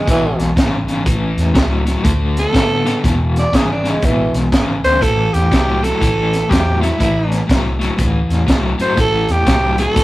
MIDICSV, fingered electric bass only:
0, 0, Header, 1, 2, 480
1, 0, Start_track
1, 0, Tempo, 493827
1, 1031, Time_signature, 4, 2, 24, 8
1, 9756, End_track
2, 0, Start_track
2, 0, Title_t, "Fingered electric bass"
2, 0, Program_c, 0, 33
2, 73, Note_on_c, 0, 33, 89
2, 311, Note_off_c, 0, 33, 0
2, 370, Note_on_c, 0, 35, 78
2, 509, Note_off_c, 0, 35, 0
2, 554, Note_on_c, 0, 32, 87
2, 791, Note_off_c, 0, 32, 0
2, 840, Note_on_c, 0, 32, 79
2, 983, Note_off_c, 0, 32, 0
2, 1029, Note_on_c, 0, 33, 93
2, 1268, Note_off_c, 0, 33, 0
2, 1326, Note_on_c, 0, 40, 81
2, 1466, Note_off_c, 0, 40, 0
2, 1510, Note_on_c, 0, 37, 87
2, 1885, Note_off_c, 0, 37, 0
2, 1990, Note_on_c, 0, 38, 96
2, 2365, Note_off_c, 0, 38, 0
2, 2473, Note_on_c, 0, 45, 93
2, 2847, Note_off_c, 0, 45, 0
2, 2956, Note_on_c, 0, 28, 95
2, 3329, Note_off_c, 0, 28, 0
2, 3431, Note_on_c, 0, 32, 98
2, 3806, Note_off_c, 0, 32, 0
2, 3908, Note_on_c, 0, 33, 93
2, 4147, Note_off_c, 0, 33, 0
2, 4209, Note_on_c, 0, 35, 79
2, 4348, Note_off_c, 0, 35, 0
2, 4698, Note_on_c, 0, 38, 83
2, 4876, Note_on_c, 0, 33, 90
2, 4891, Note_off_c, 0, 38, 0
2, 5112, Note_off_c, 0, 33, 0
2, 5186, Note_on_c, 0, 40, 74
2, 5319, Note_off_c, 0, 40, 0
2, 5362, Note_on_c, 0, 36, 85
2, 5733, Note_off_c, 0, 36, 0
2, 5843, Note_on_c, 0, 33, 88
2, 6214, Note_off_c, 0, 33, 0
2, 6325, Note_on_c, 0, 40, 88
2, 6696, Note_off_c, 0, 40, 0
2, 6807, Note_on_c, 0, 33, 89
2, 7177, Note_off_c, 0, 33, 0
2, 7285, Note_on_c, 0, 36, 88
2, 7656, Note_off_c, 0, 36, 0
2, 7758, Note_on_c, 0, 38, 85
2, 7995, Note_off_c, 0, 38, 0
2, 8058, Note_on_c, 0, 40, 73
2, 8195, Note_off_c, 0, 40, 0
2, 8241, Note_on_c, 0, 36, 92
2, 8477, Note_off_c, 0, 36, 0
2, 8543, Note_on_c, 0, 31, 83
2, 8679, Note_off_c, 0, 31, 0
2, 8720, Note_on_c, 0, 33, 90
2, 8956, Note_off_c, 0, 33, 0
2, 9029, Note_on_c, 0, 40, 82
2, 9163, Note_off_c, 0, 40, 0
2, 9203, Note_on_c, 0, 36, 92
2, 9576, Note_off_c, 0, 36, 0
2, 9684, Note_on_c, 0, 33, 89
2, 9756, Note_off_c, 0, 33, 0
2, 9756, End_track
0, 0, End_of_file